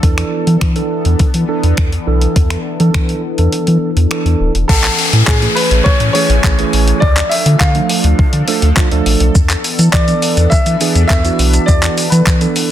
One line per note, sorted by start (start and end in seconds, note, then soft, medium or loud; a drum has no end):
0.00 0.23 E2 loud
0.00 0.54 E3 medium
0.00 4.65 E3 medium
0.00 4.65 B3 medium
0.00 4.65 D4 medium
0.00 0.54 D4 medium
0.00 4.65 A4 medium
0.00 0.54 A4 loud
0.00 kick loud
0.00 closed hi-hat medium
0.18 finger snap medium
0.18 closed hi-hat medium
0.47 0.57 E3 medium
0.47 closed hi-hat medium
0.61 0.82 E3 medium
0.61 finger snap loud
0.61 kick loud
0.61 closed hi-hat medium
0.76 1.27 E3 medium
0.76 1.27 D4 medium
0.76 1.27 A4 loud
0.76 closed hi-hat medium
1.05 1.15 E2 medium
1.05 closed hi-hat soft
1.19 1.26 E3 medium
1.19 kick loud
1.19 closed hi-hat medium
1.34 1.44 E3 loud
1.34 closed hi-hat medium
1.48 1.89 E3 medium
1.48 1.89 D4 medium
1.48 1.89 A4 medium
1.63 1.74 E2 medium
1.63 closed hi-hat soft
1.77 1.98 E2 loud
1.77 finger snap loud
1.77 kick loud
1.77 closed hi-hat medium
1.92 closed hi-hat medium
2.07 2.27 B1 loud
2.07 2.58 E3 medium
2.07 2.58 D4 medium
2.07 2.58 A4 loud
2.21 closed hi-hat medium
2.36 2.56 E2 loud
2.36 kick loud
2.36 closed hi-hat medium
2.50 finger snap medium
2.50 closed hi-hat medium
2.80 3.21 E3 medium
2.80 2.90 E3 loud
2.80 3.21 D4 medium
2.80 3.21 A4 loud
2.80 closed hi-hat medium
2.94 3.15 E3 loud
2.94 finger snap loud
2.94 kick loud
2.94 closed hi-hat medium
3.09 closed hi-hat medium
3.38 3.48 E2 medium
3.38 3.89 E3 medium
3.38 3.89 D4 medium
3.38 3.89 A4 loud
3.38 closed hi-hat soft
3.52 3.59 E3 medium
3.52 closed hi-hat medium
3.67 3.78 E3 loud
3.67 closed hi-hat medium
3.96 4.07 E2 medium
3.96 closed hi-hat soft
4.11 4.52 E3 loud
4.11 4.52 D4 medium
4.11 4.52 A4 loud
4.11 finger snap loud
4.11 closed hi-hat medium
4.25 4.35 E2 medium
4.25 closed hi-hat medium
4.40 4.50 D1 loud
4.54 4.65 E1 medium
4.54 closed hi-hat medium
4.68 4.90 A1 loud
4.68 7.00 E3 medium
4.68 9.31 A3 medium
4.68 7.00 C#4 medium
4.68 5.29 A4 medium
4.68 7.00 G#5 medium
4.68 kick loud
4.68 crash loud
4.68 downlifter medium
4.84 clap medium
4.84 closed hi-hat medium
4.99 open hi-hat medium
5.13 5.23 A2 loud
5.13 closed hi-hat medium
5.26 5.48 A2 loud
5.26 5.57 G#4 medium
5.26 kick loud
5.26 clap loud
5.42 5.93 E3 medium
5.42 5.93 A3 medium
5.42 5.93 C#4 medium
5.42 5.93 G#4 medium
5.42 closed hi-hat medium
5.55 5.86 B4 medium
5.55 open hi-hat medium
5.71 5.81 A1 loud
5.71 closed hi-hat medium
5.84 5.92 A2 soft
5.84 6.12 C#5 loud
5.84 kick loud
6.00 6.10 A2 loud
6.00 closed hi-hat medium
6.13 6.35 E3 medium
6.13 6.35 A3 medium
6.13 6.35 C#4 medium
6.13 6.35 G#4 medium
6.13 7.04 C#5 loud
6.13 open hi-hat medium
6.29 6.39 A1 loud
6.29 closed hi-hat medium
6.44 6.64 A1 loud
6.44 6.54 E3 medium
6.44 6.54 A3 medium
6.44 6.54 C#4 medium
6.44 6.54 G#4 medium
6.44 kick loud
6.44 clap loud
6.59 7.02 E3 medium
6.59 7.02 A3 medium
6.59 7.02 C#4 medium
6.59 7.03 G#4 medium
6.59 closed hi-hat medium
6.73 6.93 A1 medium
6.73 open hi-hat medium
6.88 closed hi-hat medium
7.00 7.22 D2 loud
7.00 9.33 F3 medium
7.00 9.33 D4 medium
7.00 12.71 A4 medium
7.00 7.31 D5 loud
7.00 kick loud
7.17 clap medium
7.17 closed hi-hat medium
7.29 7.57 E5 loud
7.29 open hi-hat medium
7.46 7.56 D3 loud
7.46 closed hi-hat medium
7.59 7.81 D3 loud
7.59 9.01 F5 loud
7.59 kick loud
7.59 clap loud
7.75 8.26 F3 medium
7.75 8.26 A3 medium
7.75 8.26 D4 medium
7.75 8.26 A4 medium
7.75 closed hi-hat medium
7.89 open hi-hat medium
8.04 8.14 D2 medium
8.04 closed hi-hat medium
8.19 8.25 D3 soft
8.19 kick loud
8.33 8.43 D3 loud
8.33 closed hi-hat medium
8.48 8.68 F3 loud
8.48 8.68 A3 loud
8.48 8.68 D4 medium
8.48 8.68 A4 loud
8.48 open hi-hat medium
8.62 8.72 D2 medium
8.62 closed hi-hat medium
8.77 8.87 F3 loud
8.77 8.87 A3 medium
8.77 8.87 D4 medium
8.77 8.87 F4 loud
8.77 kick loud
8.77 clap loud
8.91 9.02 D2 medium
8.91 9.35 F3 loud
8.91 9.35 A3 medium
8.91 9.35 D4 medium
8.91 9.36 A4 loud
8.91 closed hi-hat medium
9.06 9.16 A1 medium
9.06 open hi-hat medium
9.20 9.30 B1 loud
9.20 closed hi-hat medium
9.35 9.55 E2 loud
9.35 12.71 E3 medium
9.35 12.71 B3 medium
9.35 12.71 D4 medium
9.35 kick loud
9.35 shaker medium
9.50 clap medium
9.50 closed hi-hat medium
9.50 shaker medium
9.64 open hi-hat medium
9.64 shaker medium
9.79 9.89 E3 loud
9.79 closed hi-hat medium
9.79 shaker medium
9.92 10.14 E3 medium
9.92 10.47 D5 loud
9.92 kick loud
9.92 clap loud
9.92 shaker medium
10.08 10.59 E3 medium
10.08 10.59 B3 medium
10.08 10.59 D4 medium
10.08 10.59 A4 medium
10.08 closed hi-hat medium
10.08 shaker medium
10.22 open hi-hat medium
10.22 shaker medium
10.37 10.47 E2 medium
10.37 closed hi-hat medium
10.37 shaker medium
10.50 10.58 E3 soft
10.50 11.06 E5 loud
10.50 kick loud
10.50 shaker medium
10.66 10.76 E3 loud
10.66 closed hi-hat medium
10.66 shaker medium
10.81 11.01 E3 medium
10.81 11.01 B3 medium
10.81 11.01 D4 medium
10.81 11.01 G#4 loud
10.81 open hi-hat medium
10.81 shaker medium
10.95 11.05 E2 medium
10.95 closed hi-hat medium
10.95 shaker medium
11.08 11.30 E2 loud
11.08 11.20 E3 medium
11.08 11.20 B3 medium
11.08 11.20 D4 medium
11.08 11.69 E5 loud
11.08 kick loud
11.08 clap loud
11.08 shaker medium
11.25 12.06 E3 medium
11.25 12.06 B3 medium
11.25 12.06 D4 medium
11.25 12.06 F#4 medium
11.25 closed hi-hat medium
11.25 shaker medium
11.39 11.59 B1 loud
11.39 open hi-hat medium
11.39 shaker medium
11.54 closed hi-hat medium
11.54 shaker medium
11.66 11.89 E2 loud
11.66 12.08 D5 medium
11.66 kick loud
11.66 shaker medium
11.83 clap medium
11.83 closed hi-hat medium
11.83 shaker medium
11.98 open hi-hat medium
11.98 shaker medium
12.10 12.22 E3 loud
12.10 12.71 B4 medium
12.10 closed hi-hat medium
12.10 shaker medium
12.26 12.47 E3 loud
12.26 kick loud
12.26 clap loud
12.26 shaker medium
12.41 12.71 E3 medium
12.41 12.71 B3 medium
12.41 12.71 D4 medium
12.41 12.71 A4 medium
12.41 closed hi-hat medium
12.41 shaker medium
12.56 open hi-hat medium
12.56 shaker medium